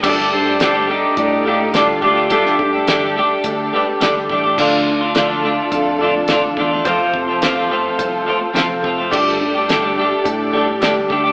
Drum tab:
CC |x---------------|----------------|x---------------|----------------|
HH |----x---x---x---|x---x---x---x---|----x---x---x---|x---x---x---x---|
SD |-o--o-------o---|-o--o-------o---|----o-------o---|----o-------o---|
BD |o-------o-----o-|o-o-----o-----o-|o-------o-----o-|o-o-----o-----o-|

CC |x---------------|
HH |----x---x---x---|
SD |-o--o-------o---|
BD |o-------o-----o-|